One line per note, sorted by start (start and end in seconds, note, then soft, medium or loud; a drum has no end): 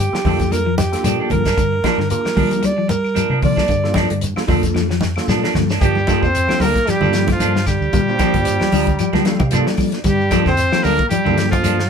0.00 0.53 G4 medium
0.12 0.19 A#3 medium
0.12 0.20 D4 medium
0.12 0.20 F4 medium
0.12 0.20 A4 medium
0.12 muted fingered electric bass stroke soft
0.12 muted clean electric guitar stroke soft
0.12 snare medium
0.12 claves medium
0.12 shekere soft
0.25 0.94 F2 medium
0.25 0.40 F3 medium
0.25 0.34 F3 medium
0.25 0.39 A#3 medium
0.25 0.65 A#3 medium
0.25 0.65 D4 medium
0.25 0.39 D4 medium
0.25 0.65 F4 medium
0.25 0.65 A4 medium
0.25 kick medium
0.25 open hi-hat medium
0.25 high conga medium
0.25 low conga medium
0.25 shekere soft
0.40 0.47 F3 medium
0.40 muted clean electric guitar stroke soft
0.40 kick medium
0.40 closed hi-hat medium
0.40 shekere medium
0.51 0.61 G3 medium
0.51 0.77 A#4 medium
0.51 muted clean electric guitar stroke soft
0.51 closed hi-hat medium
0.51 high conga medium
0.51 claves medium
0.51 shekere medium
0.66 0.83 F3 medium
0.66 muted clean electric guitar stroke soft
0.77 1.27 G4 medium
0.77 muted clean electric guitar stroke soft
0.77 snare soft
0.77 closed hi-hat medium
0.77 high conga loud
0.77 shekere medium
0.92 1.46 A#3 medium
0.92 1.46 D4 medium
0.92 1.46 F4 medium
0.92 1.46 A4 medium
0.92 snare soft
0.92 closed hi-hat medium
0.92 claves medium
0.92 shekere soft
1.04 1.17 A#2 medium
1.04 1.19 F3 medium
1.04 1.21 G3 medium
1.04 1.19 A#3 medium
1.04 1.19 D4 medium
1.04 closed hi-hat medium
1.04 high conga medium
1.04 shekere loud
1.20 1.30 F3 medium
1.20 1.31 A#3 medium
1.20 1.31 D4 medium
1.30 1.54 G2 medium
1.30 1.48 F3 medium
1.30 2.06 A#4 medium
1.30 muted clean electric guitar stroke soft
1.30 kick medium
1.30 closed hi-hat medium
1.30 high conga medium
1.30 low conga medium
1.30 claves medium
1.30 shekere soft
1.45 1.61 A#3 soft
1.45 1.60 D4 medium
1.45 kick medium
1.45 snare medium
1.45 closed hi-hat medium
1.45 shekere medium
1.57 1.80 G2 medium
1.57 1.74 D3 medium
1.57 kick loud
1.57 closed hi-hat medium
1.57 shekere medium
1.73 muted clean electric guitar stroke soft
1.84 1.93 F3 medium
1.84 1.99 F3 medium
1.84 2.00 A#3 medium
1.84 1.99 A#3 medium
1.84 2.01 D4 medium
1.84 1.98 D4 loud
1.84 2.01 F4 medium
1.84 2.01 G4 medium
1.84 kick medium
1.84 snare medium
1.84 closed hi-hat soft
1.84 high conga medium
1.84 claves medium
1.98 2.08 G2 medium
1.98 2.15 D3 medium
1.98 muted clean electric guitar stroke soft
1.98 snare soft
2.10 2.72 A#3 medium
2.10 2.72 D4 medium
2.10 2.72 F4 medium
2.10 2.73 G4 medium
2.10 2.67 A#4 medium
2.10 closed hi-hat medium
2.10 shekere medium
2.25 muted clean electric guitar stroke soft
2.25 muted fingered electric bass stroke soft
2.25 snare medium
2.25 claves medium
2.25 shekere soft
2.36 2.51 F3 medium
2.36 2.46 F3 medium
2.36 3.18 G3 loud
2.36 2.50 A#3 medium
2.36 2.49 D4 medium
2.36 kick medium
2.36 open hi-hat medium
2.36 high conga medium
2.36 low conga medium
2.36 shekere soft
2.51 2.59 F3 medium
2.51 muted clean electric guitar stroke soft
2.51 closed hi-hat medium
2.51 shekere medium
2.62 2.72 G3 medium
2.62 2.89 D5 loud
2.62 muted clean electric guitar stroke soft
2.62 closed hi-hat medium
2.62 high conga medium
2.62 claves medium
2.62 shekere medium
2.76 2.95 F3 medium
2.76 muted clean electric guitar stroke soft
2.88 3.39 A#4 medium
2.88 muted clean electric guitar stroke soft
2.88 closed hi-hat soft
2.88 high conga loud
2.88 shekere loud
3.04 claves medium
3.04 shekere soft
3.15 3.30 F3 medium
3.15 3.33 G3 medium
3.15 3.29 A#3 medium
3.15 3.28 D4 medium
3.15 closed hi-hat medium
3.15 high conga medium
3.15 shekere loud
3.30 3.53 C3 medium
3.30 3.40 F3 soft
3.30 3.40 A#3 medium
3.30 3.40 D4 medium
3.41 3.60 F3 medium
3.41 3.66 A#3 medium
3.41 3.66 D4 medium
3.41 3.66 F4 medium
3.41 3.66 A#4 medium
3.41 4.19 D5 loud
3.41 muted clean electric guitar stroke soft
3.41 kick medium
3.41 open hi-hat medium
3.41 low conga medium
3.41 claves medium
3.41 shekere soft
3.56 3.68 G3 medium
3.56 3.72 A#3 soft
3.56 3.72 D4 medium
3.56 kick medium
3.56 snare medium
3.56 shekere medium
3.68 4.05 G2 loud
3.68 3.86 D3 medium
3.68 kick medium
3.68 closed hi-hat medium
3.68 low conga medium
3.68 shekere medium
3.83 4.14 A#3 medium
3.83 4.14 D4 medium
3.83 4.14 F4 medium
3.83 4.14 A4 medium
3.83 muted clean electric guitar stroke medium
3.83 snare soft
3.94 4.11 F3 medium
3.94 4.05 F3 medium
3.94 4.09 A#3 medium
3.94 4.08 D4 medium
3.94 kick medium
3.94 snare medium
3.94 closed hi-hat soft
3.94 high conga loud
3.94 claves medium
4.09 4.34 G2 medium
4.09 4.27 D3 medium
4.09 muted clean electric guitar stroke soft
4.09 closed hi-hat soft
4.21 closed hi-hat medium
4.21 shekere medium
4.36 4.43 A#3 medium
4.36 4.44 D4 medium
4.36 4.44 F4 medium
4.36 4.44 A4 loud
4.36 muted clean electric guitar stroke medium
4.36 muted fingered electric bass stroke soft
4.36 snare medium
4.36 claves medium
4.36 shekere soft
4.47 5.17 F2 medium
4.47 4.63 F3 medium
4.47 4.58 F3 medium
4.47 4.88 A#3 loud
4.47 4.62 A#3 medium
4.47 4.87 D4 loud
4.47 4.62 D4 medium
4.47 4.88 F4 medium
4.47 4.88 A4 loud
4.47 kick medium
4.47 snare soft
4.47 open hi-hat medium
4.47 high conga medium
4.47 low conga medium
4.47 shekere soft
4.63 4.71 F3 medium
4.63 muted clean electric guitar stroke soft
4.63 kick medium
4.63 closed hi-hat medium
4.63 shekere medium
4.74 4.85 F3 medium
4.74 muted clean electric guitar stroke soft
4.74 snare soft
4.74 high conga medium
4.74 claves medium
4.74 shekere medium
4.89 5.07 F3 medium
4.89 muted clean electric guitar stroke medium
4.89 snare soft
5.01 muted clean electric guitar stroke soft
5.01 snare medium
5.01 high conga loud
5.01 shekere medium
5.16 5.70 A#3 medium
5.16 5.70 D4 medium
5.16 5.70 F4 medium
5.16 5.70 A4 medium
5.16 snare medium
5.16 claves medium
5.16 shekere soft
5.28 5.41 A#2 loud
5.28 5.43 F3 medium
5.28 5.46 G3 medium
5.28 5.42 A#3 medium
5.28 5.42 D4 medium
5.28 snare medium
5.28 high conga medium
5.28 shekere medium
5.43 5.54 F3 medium
5.43 5.54 A#3 medium
5.43 5.54 D4 medium
5.43 snare medium
5.54 5.77 G2 medium
5.54 5.72 F3 medium
5.54 muted clean electric guitar stroke soft
5.54 snare medium
5.54 high conga medium
5.54 low conga medium
5.54 claves medium
5.54 shekere soft
5.70 5.81 A#3 medium
5.70 5.82 D4 medium
5.70 snare medium
5.70 shekere medium
5.81 6.17 G2 loud
5.81 5.97 F3 medium
5.81 5.98 G3 medium
5.81 6.27 G3 medium
5.81 5.97 A#3 medium
5.81 5.96 D4 medium
5.81 6.24 G4 loud
5.81 kick loud
5.81 closed hi-hat medium
5.81 low conga medium
5.81 shekere medium
5.95 muted clean electric guitar stroke soft
5.95 high conga medium
5.95 shekere soft
6.07 6.25 F3 medium
6.07 6.31 A#3 medium
6.07 6.25 A#3 loud
6.07 6.31 D4 medium
6.07 6.26 D4 medium
6.07 6.31 F4 medium
6.07 6.31 A4 medium
6.07 kick medium
6.07 snare soft
6.07 closed hi-hat medium
6.07 high conga medium
6.07 claves medium
6.07 shekere medium
6.22 6.46 F2 medium
6.22 6.66 C4 medium
6.22 6.62 C5 loud
6.22 kick medium
6.22 shekere soft
6.35 closed hi-hat medium
6.35 shekere medium
6.47 6.57 F3 medium
6.47 6.78 A#3 medium
6.47 6.79 D4 medium
6.47 6.79 F4 medium
6.47 6.79 A4 medium
6.47 muted fingered electric bass stroke soft
6.47 snare medium
6.47 high conga medium
6.47 claves medium
6.47 shekere soft
6.60 6.73 D2 loud
6.60 6.78 G3 medium
6.60 6.74 D4 medium
6.60 6.91 A#4 loud
6.60 open hi-hat medium
6.60 high conga medium
6.60 shekere medium
6.65 6.91 A#3 medium
6.76 muted clean electric guitar stroke soft
6.76 kick medium
6.76 snare soft
6.76 closed hi-hat medium
6.76 shekere soft
6.87 6.97 F3 medium
6.87 7.30 G3 medium
6.87 7.30 G4 loud
6.87 muted clean electric guitar stroke soft
6.87 muted fingered electric bass stroke soft
6.87 snare soft
6.87 closed hi-hat medium
6.87 claves medium
6.87 shekere medium
7.00 7.35 G2 medium
7.00 7.10 D#3 medium
7.00 7.12 F3 medium
7.00 7.54 A#3 medium
7.00 7.14 A#3 medium
7.00 7.54 D4 medium
7.00 7.13 D4 medium
7.00 7.55 F4 medium
7.00 7.55 A4 medium
7.00 low conga medium
7.00 shekere soft
7.13 7.31 F3 medium
7.13 muted clean electric guitar stroke soft
7.13 snare medium
7.13 closed hi-hat soft
7.13 shekere medium
7.28 7.66 F3 medium
7.28 muted clean electric guitar stroke soft
7.28 kick medium
7.28 snare soft
7.28 closed hi-hat medium
7.28 high conga loud
7.28 claves medium
7.28 shekere soft
7.32 7.66 F4 medium
7.39 7.76 G2 medium
7.39 7.55 F3 medium
7.39 7.53 A#3 medium
7.39 7.53 D4 medium
7.39 closed hi-hat medium
7.39 high conga medium
7.39 shekere loud
7.54 7.62 G3 medium
7.54 muted clean electric guitar stroke soft
7.54 snare medium
7.54 shekere soft
7.65 7.84 D3 medium
7.65 9.76 G3 medium
7.65 9.75 G4 loud
7.65 muted clean electric guitar stroke soft
7.65 kick medium
7.65 snare soft
7.65 closed hi-hat soft
7.65 claves medium
7.65 shekere medium
7.81 7.91 D2 medium
7.81 shekere soft
7.93 8.16 A#2 loud
7.93 8.10 G3 medium
7.93 8.02 A#3 medium
7.93 8.02 D4 medium
7.93 8.01 F4 medium
7.93 8.01 A#4 medium
7.93 kick medium
7.93 closed hi-hat medium
7.93 low conga medium
7.93 shekere medium
8.07 8.68 A#3 medium
8.07 8.68 D4 medium
8.07 8.69 F4 medium
8.07 8.69 C5 medium
8.07 muted clean electric guitar stroke soft
8.07 shekere soft
8.18 8.36 F3 medium
8.18 8.37 F3 medium
8.18 8.36 A#3 medium
8.18 8.37 D4 medium
8.18 muted fingered electric bass stroke soft
8.18 kick medium
8.18 snare soft
8.18 closed hi-hat medium
8.18 high conga loud
8.18 claves medium
8.18 shekere medium
8.34 8.57 G2 medium
8.34 kick medium
8.34 closed hi-hat medium
8.34 low conga medium
8.34 shekere soft
8.45 closed hi-hat medium
8.45 shekere medium
8.60 8.69 F3 medium
8.60 muted clean electric guitar stroke soft
8.60 snare medium
8.60 high conga medium
8.60 claves medium
8.60 shekere soft
8.72 8.96 D2 loud
8.72 8.87 F3 medium
8.72 8.90 G3 medium
8.72 8.86 D4 medium
8.72 8.97 A#5 medium
8.72 open hi-hat medium
8.72 high conga medium
8.72 shekere medium
8.87 muted clean electric guitar stroke soft
8.87 kick medium
8.87 closed hi-hat medium
8.87 shekere soft
8.99 9.09 F3 medium
8.99 9.24 G5 medium
8.99 muted clean electric guitar stroke soft
8.99 closed hi-hat medium
8.99 claves medium
8.99 shekere loud
9.13 9.24 F3 medium
9.13 9.21 F3 medium
9.13 9.37 G3 medium
9.13 9.24 A#3 medium
9.13 9.24 D4 medium
9.13 snare soft
9.13 high conga medium
9.13 low conga medium
9.13 shekere soft
9.25 9.42 F3 medium
9.25 9.42 A#3 medium
9.25 9.42 D4 medium
9.25 9.43 F4 medium
9.25 9.43 A4 medium
9.25 9.51 F5 medium
9.25 muted clean electric guitar stroke medium
9.25 snare medium
9.25 closed hi-hat soft
9.25 shekere medium
9.39 9.63 C3 medium
9.39 muted clean electric guitar stroke medium
9.39 kick medium
9.39 high conga loud
9.39 claves medium
9.39 shekere soft
9.51 9.66 F3 medium
9.51 9.66 A#3 medium
9.51 9.99 A#3 medium
9.51 9.99 D4 medium
9.51 9.65 D4 medium
9.51 9.99 F4 medium
9.51 9.99 A4 loud
9.51 9.77 D5 medium
9.51 closed hi-hat medium
9.51 high conga medium
9.51 shekere loud
9.66 9.75 G3 medium
9.66 muted clean electric guitar stroke soft
9.66 snare medium
9.66 shekere soft
9.77 9.95 F3 medium
9.77 9.91 G3 medium
9.77 10.03 D5 medium
9.77 muted clean electric guitar stroke soft
9.77 kick medium
9.77 open hi-hat medium
9.77 claves medium
9.77 shekere medium
9.92 snare soft
9.92 closed hi-hat medium
9.92 shekere soft
10.04 10.40 G2 loud
10.04 10.22 G3 medium
10.04 10.44 G3 medium
10.04 10.43 G4 loud
10.04 kick medium
10.04 snare soft
10.04 closed hi-hat medium
10.04 low conga medium
10.04 shekere medium
10.20 muted clean electric guitar stroke soft
10.20 shekere soft
10.31 10.48 F3 medium
10.31 10.54 A#3 medium
10.31 10.49 A#3 medium
10.31 10.55 D4 medium
10.31 10.49 D4 loud
10.31 10.55 F4 medium
10.31 10.55 A4 medium
10.31 kick medium
10.31 snare soft
10.31 closed hi-hat medium
10.31 high conga loud
10.31 claves medium
10.31 shekere medium
10.46 10.69 F2 loud
10.46 10.86 C4 medium
10.46 10.85 C5 loud
10.46 kick medium
10.46 snare soft
10.46 low conga medium
10.46 shekere soft
10.57 closed hi-hat medium
10.57 shekere loud
10.72 10.80 F3 medium
10.72 11.03 A#3 medium
10.72 11.02 D4 medium
10.72 11.03 F4 medium
10.72 11.03 A4 medium
10.72 muted fingered electric bass stroke soft
10.72 snare medium
10.72 claves medium
10.72 shekere soft
10.83 10.97 D2 loud
10.83 10.99 F3 medium
10.83 11.00 G3 medium
10.83 10.97 A#3 medium
10.83 11.10 A#3 medium
10.83 10.97 D4 medium
10.83 11.09 A#4 loud
10.83 open hi-hat medium
10.83 high conga medium
10.83 shekere medium
10.98 muted clean electric guitar stroke soft
10.98 kick medium
10.98 closed hi-hat medium
10.98 shekere soft
11.09 11.20 F3 medium
11.09 11.49 G3 medium
11.09 11.48 G4 medium
11.09 muted clean electric guitar stroke soft
11.09 muted fingered electric bass stroke soft
11.09 closed hi-hat medium
11.09 high conga medium
11.09 claves medium
11.09 shekere medium
11.25 11.59 G2 medium
11.25 11.33 D#3 medium
11.25 11.36 F3 medium
11.25 11.36 A#3 medium
11.25 11.79 A#3 medium
11.25 11.36 D4 medium
11.25 11.79 D4 medium
11.25 11.79 F4 medium
11.25 11.79 A4 medium
11.25 high conga medium
11.25 low conga medium
11.25 shekere soft
11.37 11.54 F3 medium
11.37 muted clean electric guitar stroke soft
11.37 snare medium
11.37 closed hi-hat soft
11.37 shekere medium
11.50 11.90 F3 medium
11.50 11.90 F4 medium
11.50 muted clean electric guitar stroke medium
11.50 kick medium
11.50 closed hi-hat medium
11.50 high conga loud
11.50 claves medium
11.50 shekere soft
11.63 11.90 G2 medium
11.63 11.78 F3 medium
11.63 11.76 A#3 medium
11.63 11.76 D4 medium
11.63 closed hi-hat medium
11.63 high conga medium
11.63 shekere loud
11.77 muted clean electric guitar stroke soft
11.77 snare medium
11.77 shekere soft